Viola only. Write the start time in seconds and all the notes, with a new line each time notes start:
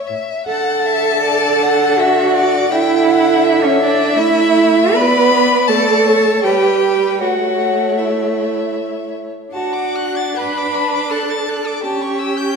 0.48 D3
2.72 D3
4.16 A3
4.94 B3
5.68 A3
6.45 G3
7.21 A3
9.53 D4
11.83 C#4